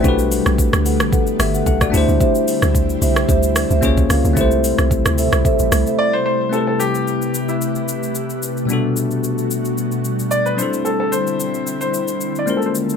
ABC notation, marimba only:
X:1
M:4/4
L:1/16
Q:"Swing 16ths" 1/4=111
K:Dmix
V:1 name="Marimba"
[ABf]4 z2 [ABf] z [ABf] z2 [ABf] z2 [Gce] z | [Gce]4 z2 [Gce] z [Gce] z2 [Gce] z2 [^A^c^e] z | [Ace]4 z2 [Ace] z [Ace] z2 [Ace] z4 | z16 |
z16 | z16 |]